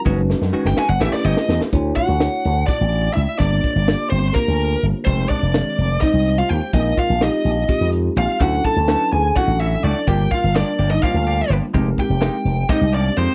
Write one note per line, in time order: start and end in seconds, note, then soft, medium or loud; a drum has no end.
0.05 0.33 F#1 loud
0.05 0.20 D#3 medium
0.05 0.44 G#3 medium
0.05 0.20 G#3 medium
0.05 0.44 C#4 medium
0.05 0.20 C#4 medium
0.05 0.44 D#4 medium
0.05 0.20 F#4 loud
0.05 0.44 F#4 medium
0.05 0.44 B4 medium
0.05 kick loud
0.05 closed hi-hat medium
0.30 snare medium
0.42 0.51 F#2 medium
0.42 snare soft
0.52 0.68 D#3 medium
0.52 0.87 G#3 medium
0.52 0.68 G#3 medium
0.52 0.87 C#4 medium
0.52 0.68 C#4 medium
0.52 0.87 D#4 medium
0.52 0.87 F#4 medium
0.52 0.68 F#4 medium
0.52 0.87 B4 medium
0.52 muted slap bass stroke soft
0.65 0.74 G#1 medium
0.65 0.78 G5 medium
0.65 snare medium
0.77 0.92 G#3 soft
0.77 0.92 C#4 soft
0.77 0.91 F#4 soft
0.77 0.89 G#5 loud
0.77 muted slap bass stroke soft
0.77 snare medium
0.89 0.98 F#1 medium
0.89 1.01 F#5 medium
0.99 1.10 A1 loud
0.99 1.15 E3 medium
0.99 1.68 A3 medium
0.99 1.15 A3 medium
0.99 1.68 C#4 medium
0.99 1.15 C#4 medium
0.99 1.68 E4 medium
0.99 1.69 G4 medium
0.99 1.16 G4 medium
0.99 1.69 B4 medium
0.99 1.13 E5 medium
0.99 snare medium
1.13 1.25 D5 medium
1.13 muted slap bass stroke soft
1.13 snare medium
1.24 1.34 G1 medium
1.24 1.40 A3 soft
1.24 1.39 C#4 medium
1.24 1.39 G4 medium
1.24 1.59 D#5 medium
1.37 snare medium
1.49 1.58 E2 medium
1.49 snare medium
1.61 muted slap bass stroke soft
1.61 snare medium
1.72 1.91 D2 medium
1.72 2.11 A3 medium
1.72 2.11 D4 medium
1.72 2.11 E4 medium
1.72 2.11 F#4 medium
1.72 2.11 C#5 medium
1.72 kick medium
1.72 closed hi-hat medium
1.96 2.65 F#4 medium
1.96 2.64 F#5 medium
1.96 kick medium
1.96 closed hi-hat medium
2.09 2.27 D2 medium
2.19 2.54 A3 medium
2.19 2.54 D4 soft
2.19 2.54 E4 medium
2.19 2.55 F#4 medium
2.19 2.55 C#5 medium
2.19 snare loud
2.19 closed hi-hat medium
2.45 2.63 D2 medium
2.45 closed hi-hat medium
2.66 3.35 A3 medium
2.66 3.36 D4 soft
2.66 3.13 D4 medium
2.66 3.36 E4 medium
2.66 3.36 F#4 soft
2.66 3.13 D5 medium
2.66 3.36 D5 medium
2.66 kick medium
2.66 closed hi-hat medium
2.81 3.08 A1 medium
2.92 closed hi-hat soft
3.14 3.25 C#2 medium
3.14 3.38 E4 medium
3.14 3.38 E5 medium
3.14 closed hi-hat medium
3.38 3.58 G1 loud
3.38 3.77 A#3 medium
3.38 4.07 D4 medium
3.38 3.78 D4 medium
3.38 3.78 F4 medium
3.38 3.78 G4 medium
3.38 3.78 A#4 medium
3.38 4.10 D5 medium
3.38 kick medium
3.38 closed hi-hat medium
3.64 kick medium
3.64 closed hi-hat medium
3.76 3.94 G1 medium
3.87 4.21 A#3 medium
3.87 4.21 D4 medium
3.87 4.22 F4 medium
3.87 4.22 G4 medium
3.87 4.22 A#4 medium
3.87 snare loud
3.87 closed hi-hat medium
4.10 4.30 G1 medium
4.10 4.33 C4 medium
4.10 4.33 C5 medium
4.10 closed hi-hat medium
4.33 4.84 A#3 medium
4.33 5.03 A#3 medium
4.33 5.03 D4 medium
4.33 5.03 F4 medium
4.33 5.03 G4 soft
4.33 4.85 A#4 medium
4.33 5.03 C5 medium
4.33 kick medium
4.33 closed hi-hat medium
4.48 4.75 D2 medium
4.60 closed hi-hat medium
4.83 4.92 G1 medium
4.83 closed hi-hat soft
5.05 5.25 F1 loud
5.05 5.45 G#3 medium
5.05 5.28 C4 medium
5.05 5.45 C4 medium
5.05 5.45 D#4 medium
5.05 5.45 G4 medium
5.05 5.45 A#4 medium
5.05 5.29 C5 medium
5.05 kick medium
5.05 closed hi-hat medium
5.29 5.98 D4 medium
5.29 6.01 D5 medium
5.29 kick medium
5.29 closed hi-hat soft
5.43 5.61 F1 medium
5.54 5.88 D#3 medium
5.54 5.88 G#3 medium
5.54 5.88 C4 medium
5.54 5.89 G4 medium
5.54 5.89 A#4 medium
5.54 snare loud
5.54 closed hi-hat medium
5.78 5.96 F1 medium
5.78 closed hi-hat medium
6.01 6.70 G#3 medium
6.01 6.70 C4 medium
6.01 6.70 D#4 medium
6.01 6.36 D#4 medium
6.01 6.70 G4 medium
6.01 6.71 C5 medium
6.01 6.39 D#5 medium
6.01 kick medium
6.01 closed hi-hat medium
6.13 6.41 C2 medium
6.26 closed hi-hat medium
6.38 6.52 F4 medium
6.38 6.49 F5 medium
6.49 6.59 D#2 medium
6.49 6.75 G4 medium
6.49 6.73 G5 medium
6.49 closed hi-hat medium
6.73 6.92 A#1 loud
6.73 7.12 G#3 medium
6.73 7.12 C4 medium
6.73 6.96 D#4 medium
6.73 7.12 D#4 medium
6.73 7.12 F4 medium
6.73 7.12 A#4 medium
6.73 6.96 D#5 medium
6.73 kick medium
6.73 closed hi-hat medium
6.97 7.20 F4 medium
6.97 7.23 F5 medium
6.97 kick medium
6.97 closed hi-hat medium
7.10 7.28 A#1 medium
7.20 7.55 G#3 medium
7.20 7.55 C4 medium
7.20 7.55 D#4 medium
7.20 7.90 D#4 medium
7.20 7.55 F4 medium
7.20 7.56 G4 medium
7.20 7.90 D#5 medium
7.20 snare medium
7.20 closed hi-hat medium
7.45 7.63 A#1 medium
7.45 closed hi-hat medium
7.68 8.36 G#3 medium
7.68 8.36 C4 medium
7.68 8.37 D#4 medium
7.68 8.37 F4 medium
7.68 8.37 G4 medium
7.68 kick medium
7.68 closed hi-hat medium
7.81 8.08 F2 medium
7.92 closed hi-hat medium
8.16 8.26 A#1 medium
8.16 8.42 F5 medium
8.16 closed hi-hat medium
8.20 8.41 F4 medium
8.40 8.59 D2 medium
8.40 8.79 F#3 medium
8.40 8.55 A3 medium
8.40 8.55 C#4 medium
8.40 8.79 C#4 medium
8.40 8.79 D4 medium
8.40 8.79 E4 medium
8.40 8.55 F#4 medium
8.40 8.64 F#4 medium
8.40 8.79 A4 medium
8.40 8.65 F#5 medium
8.40 kick medium
8.40 closed hi-hat medium
8.64 9.10 A4 medium
8.64 9.12 A5 loud
8.64 kick medium
8.64 closed hi-hat medium
8.76 8.95 D2 medium
8.88 9.22 F#3 medium
8.88 9.03 A3 medium
8.88 9.22 C#4 medium
8.88 9.03 C#4 medium
8.88 9.23 D4 medium
8.88 9.23 E4 medium
8.88 9.03 F#4 medium
8.88 9.23 B4 medium
8.88 snare medium
8.88 closed hi-hat medium
9.12 9.31 D2 medium
9.12 9.36 G#4 medium
9.12 9.35 G#5 medium
9.12 closed hi-hat medium
9.35 10.04 F#3 medium
9.35 9.51 A3 medium
9.35 10.04 C#4 medium
9.35 9.51 C#4 medium
9.35 10.04 D4 medium
9.35 10.04 E4 medium
9.35 9.51 F#4 medium
9.35 9.60 F#4 medium
9.35 10.04 A4 medium
9.35 9.59 F#5 medium
9.35 kick medium
9.35 closed hi-hat medium
9.48 9.75 A1 medium
9.60 9.75 C#4 soft
9.60 9.84 E4 medium
9.60 9.74 F#4 soft
9.60 9.84 E5 medium
9.60 closed hi-hat medium
9.83 9.93 C#2 medium
9.83 9.98 A3 medium
9.83 9.98 C#4 medium
9.83 10.08 D4 medium
9.83 9.99 F#4 medium
9.83 10.09 D5 medium
9.83 closed hi-hat medium
10.07 10.26 G1 medium
10.07 10.22 F3 medium
10.07 10.45 G3 medium
10.07 10.46 A#3 medium
10.07 10.22 A#3 medium
10.07 10.46 D4 medium
10.07 10.22 D4 medium
10.07 10.46 F4 medium
10.07 10.22 G4 medium
10.07 10.31 G4 medium
10.07 10.46 A#4 medium
10.07 10.30 G5 medium
10.07 kick loud
10.07 closed hi-hat medium
10.31 10.55 F4 medium
10.31 10.56 F5 medium
10.31 kick medium
10.31 closed hi-hat medium
10.44 10.62 G1 medium
10.55 10.70 F3 medium
10.55 10.89 G3 medium
10.55 10.89 A#3 medium
10.55 10.70 A#3 medium
10.55 10.90 D4 medium
10.55 10.70 D4 medium
10.55 10.90 D4 medium
10.55 10.90 F4 medium
10.55 10.70 G4 medium
10.55 10.90 A#4 medium
10.55 10.91 D5 medium
10.55 snare loud
10.55 closed hi-hat medium
10.79 10.97 G1 medium
10.79 10.94 A#3 soft
10.79 10.94 D4 soft
10.79 10.93 G4 soft
10.79 closed hi-hat medium
10.91 11.04 D#4 medium
10.91 11.02 D#5 medium
11.02 11.17 F3 medium
11.02 11.70 G3 medium
11.02 11.71 A#3 medium
11.02 11.17 A#3 medium
11.02 11.71 D4 medium
11.02 11.18 D4 medium
11.02 11.71 F4 medium
11.02 11.54 F4 medium
11.02 11.18 G4 medium
11.02 11.71 C5 medium
11.02 11.53 F5 medium
11.02 kick medium
11.02 closed hi-hat medium
11.14 11.42 D2 medium
11.27 11.42 A#3 soft
11.27 11.42 D4 soft
11.27 11.41 G4 medium
11.27 closed hi-hat medium
11.50 11.59 G1 medium
11.50 11.65 F3 medium
11.50 11.65 A#3 medium
11.50 11.65 D4 medium
11.50 11.65 G4 medium
11.50 closed hi-hat medium
11.73 11.93 F1 loud
11.73 12.12 G#3 medium
11.73 11.88 G#3 medium
11.73 11.89 A#3 medium
11.73 12.13 C4 medium
11.73 11.89 D#4 medium
11.73 12.13 D#4 medium
11.73 11.89 G4 medium
11.73 12.13 G4 medium
11.73 12.13 A#4 medium
11.73 kick medium
11.73 closed hi-hat medium
11.98 12.68 G4 medium
11.98 12.73 G5 loud
11.98 kick medium
11.98 closed hi-hat medium
12.10 12.28 F1 medium
12.21 12.36 G#3 medium
12.21 12.55 G#3 medium
12.21 12.36 A#3 medium
12.21 12.56 C4 medium
12.21 12.56 D#4 medium
12.21 12.36 D#4 medium
12.21 12.56 G4 medium
12.21 12.36 G4 medium
12.21 12.56 A#4 medium
12.21 snare medium
12.21 closed hi-hat medium
12.45 12.64 F1 medium
12.45 closed hi-hat medium
12.69 12.84 G#3 medium
12.69 13.35 G#3 medium
12.69 12.84 A#3 medium
12.69 13.35 C4 medium
12.69 12.84 D#4 medium
12.69 13.35 D#4 medium
12.69 12.94 D#4 medium
12.69 12.84 G4 medium
12.69 13.35 G4 medium
12.69 13.35 C5 medium
12.69 12.94 D#5 medium
12.69 kick loud
12.69 closed hi-hat medium
12.81 13.09 C2 medium
12.93 13.08 A#3 soft
12.93 13.17 D4 medium
12.93 13.08 D#4 soft
12.93 13.07 G4 medium
12.93 13.16 D5 medium
12.93 closed hi-hat medium
13.17 13.26 F2 medium
13.17 13.32 G#3 medium
13.17 13.32 A#3 medium
13.17 13.35 C4 medium
13.17 13.32 D#4 medium
13.17 13.32 G4 medium
13.17 13.35 C5 medium
13.17 closed hi-hat soft